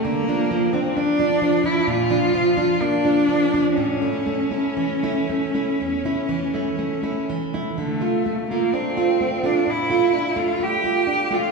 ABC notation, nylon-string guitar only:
X:1
M:4/4
L:1/16
Q:1/4=63
K:Dm
V:1 name="Nylon-string guitar"
D, [F,D] F, [F,D] D [F,D] F, [F,D] B,, [F,D] F, [F,D] B, [F,D] F, [F,D] | A,, [A,E] A, [A,E] E, [A,E] A, [A,E] E,, [A,E] E, [A,E] A, [A,E] E, [A,E] | D, [A,F] A, [A,F] D [A,F] A, [A,F] A,, [A,F] D [A,F] A, [A,F] D [A,F] |]